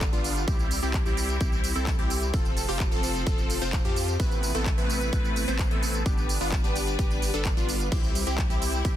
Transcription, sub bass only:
0.00 0.10 G1 loud
0.13 0.45 G1 loud
0.48 0.80 C2 loud
0.82 1.03 C2 loud
1.06 1.38 C2 medium
1.41 1.73 C2 loud
1.75 1.96 C2 loud
1.99 2.31 C2 medium
2.34 2.66 F1 loud
2.69 2.90 F1 loud
2.92 3.24 F1 medium
3.27 3.59 F1 medium
3.62 3.83 F1 loud
3.85 4.17 F2 medium
4.20 4.52 A1 loud
4.55 4.76 A1 loud
4.78 5.10 A1 loud
5.13 5.45 A1 medium
5.48 5.69 A1 loud
5.71 6.04 A1 loud
6.06 6.38 G1 loud
6.41 6.62 G1 loud
6.64 6.97 G1 medium
6.99 7.31 G1 loud
7.34 7.55 G1 loud
7.57 7.90 G1 loud
7.92 8.24 C2 loud
8.27 8.48 C2 loud
8.50 8.82 C2 loud
8.85 8.96 C2 loud

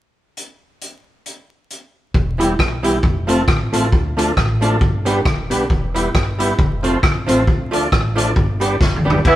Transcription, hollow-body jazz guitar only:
2.38 2.52 E3 medium
2.38 2.52 B3 medium
2.38 2.52 E4 medium
2.38 2.52 G4 medium
2.83 2.96 E3 medium
2.83 2.96 B3 medium
2.83 2.97 E4 medium
2.83 2.97 G4 medium
3.27 3.41 F3 medium
3.27 3.41 A3 medium
3.27 3.41 C4 loud
3.27 3.41 F4 medium
3.73 3.86 F3 medium
3.73 3.86 A3 medium
3.73 3.86 C4 medium
3.73 3.86 F4 medium
4.17 4.30 F3 medium
4.17 4.30 A3 medium
4.17 4.30 D4 medium
4.17 4.31 F4 medium
4.61 4.74 F3 medium
4.61 4.74 A3 medium
4.61 4.75 D4 medium
4.61 4.75 F4 medium
5.05 5.19 G3 loud
5.05 5.19 B3 loud
5.05 5.19 D4 medium
5.05 5.19 G4 loud
5.51 5.63 G3 medium
5.51 5.64 B3 medium
5.51 5.64 D4 medium
5.51 5.64 G4 medium
5.94 6.08 G3 medium
5.94 6.08 B3 medium
5.94 6.08 E4 medium
5.94 6.08 G4 medium
6.39 6.52 G3 medium
6.39 6.52 B3 medium
6.39 6.53 E4 medium
6.39 6.53 G4 loud
6.83 6.96 F3 medium
6.83 6.97 A3 medium
6.83 6.97 C4 medium
6.83 6.97 F4 medium
7.27 7.40 F3 medium
7.27 7.41 A3 medium
7.27 7.41 C4 medium
7.27 7.41 F4 medium
7.71 7.85 F3 medium
7.71 7.85 A3 medium
7.71 7.85 D4 medium
7.71 7.85 F4 medium
8.15 8.29 F3 medium
8.15 8.29 A3 medium
8.15 8.30 D4 loud
8.15 8.30 F4 loud
8.60 8.74 G3 medium
8.60 8.74 B3 medium
8.60 8.74 D4 medium
8.60 8.75 G4 medium
9.05 9.18 G3 medium
9.05 9.19 B3 medium
9.05 9.19 D4 medium
9.05 9.19 G4 medium

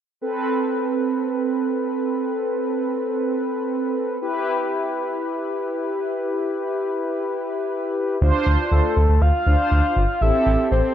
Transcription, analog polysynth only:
0.22 4.18 C4 medium
0.22 4.18 A4 medium
0.22 4.18 B4 medium
4.22 8.18 E4 medium
4.22 8.18 G4 medium
4.22 8.18 B4 medium
8.22 8.97 D4 medium
8.22 8.97 F4 medium
8.22 8.97 C5 loud
9.47 10.03 D4 medium
9.47 10.03 F4 medium
9.47 10.03 C5 medium
10.22 10.94 C4 medium
10.22 10.94 G4 medium
10.22 10.94 A4 medium

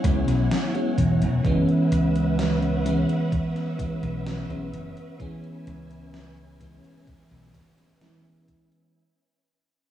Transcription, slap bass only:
0.04 0.24 C#2 medium
0.28 0.47 B1 loud
0.98 1.18 E1 medium
1.21 1.41 E1 medium
1.45 1.65 F#1 medium
1.92 3.03 C#2 medium
4.03 4.42 B1 medium
4.50 4.69 B1 medium
4.73 4.93 F#1 medium
5.67 6.78 C#2 medium
7.31 7.51 B1 medium

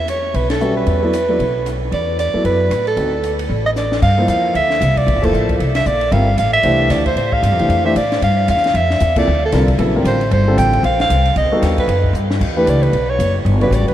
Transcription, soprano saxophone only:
0.09 0.37 C#5 medium
0.36 0.50 B4 medium
0.51 0.75 A4 medium
0.77 1.78 B4 medium
1.93 2.17 D5 medium
2.19 2.43 D5 medium
2.46 2.84 B4 medium
2.88 3.36 A4 medium
3.66 3.71 D#5 medium
3.77 4.01 D5 medium
4.03 4.27 F5 loud
4.30 4.54 F5 medium
4.56 4.99 E5 medium
4.98 5.26 D5 medium
5.25 5.50 A4 medium
5.76 5.88 E5 loud
5.87 6.14 D5 loud
6.12 6.38 F5 medium
6.39 6.53 F5 loud
6.53 6.93 E5 loud
6.91 7.06 D5 loud
7.07 7.17 C5 medium
7.17 7.35 C5 medium
7.33 7.85 F5 loud
7.86 7.95 E5 loud
7.97 8.21 D5 medium
8.24 8.47 F5 loud
8.50 8.78 F5 loud
8.76 9.17 E5 medium
9.18 9.42 D5 medium
9.46 9.68 A4 medium
10.07 10.31 C5 medium
10.33 10.57 C5 medium
10.58 10.82 G5 loud
10.85 10.99 F5 medium
11.01 11.35 F5 loud
11.38 11.61 D#5 medium
11.80 12.13 B4 medium
12.57 12.71 B4 medium
12.69 12.85 D5 medium
12.83 13.11 B4 medium
13.10 13.36 C#5 loud
13.63 13.76 B4 medium
13.75 13.88 D5 medium
13.88 13.94 B4 medium

